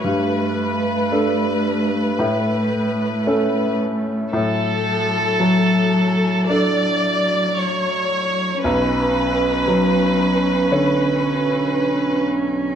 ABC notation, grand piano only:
X:1
M:4/4
L:1/8
Q:1/4=56
K:Dlyd
V:1 name="Grand piano"
=G,,2 [DA]2 A,,2 [CA]2 | A,,2 F,2 [DA]4 | B,,,2 F,2 [D,c]4 |]